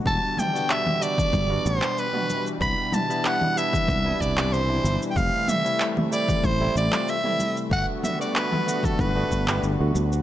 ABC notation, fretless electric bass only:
X:1
M:4/4
L:1/16
Q:1/4=94
K:Em
V:1 name="Fretless electric bass" clef=bass
E,,, z6 z G,,, z A,,, z4 z | C,, z6 z C,, z C,,4 G,,, z | =F,,, z6 z A,,, z A,,, z4 z | G,,, z6 z G,,, z G,,,2 G,,, D,, D,, z |]